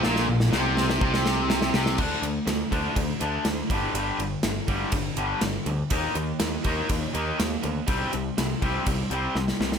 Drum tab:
CC |----------------|x---------------|----------------|----------------|
RD |----------------|--x-x-x-x-x-x-x-|x-x-x-x-x-x-x-x-|x-x-x-x-x-x-x-x-|
SD |oo-oo-oo-oo-oooo|----o-------o---|----o-------o---|----o-------o---|
BD |--------o-------|o-----o-o-----o-|------o-o-------|o-----o-o-------|

CC |----------------|
RD |x-x-x-x-x-x-----|
SD |----o-------oooo|
BD |o-----o-o-------|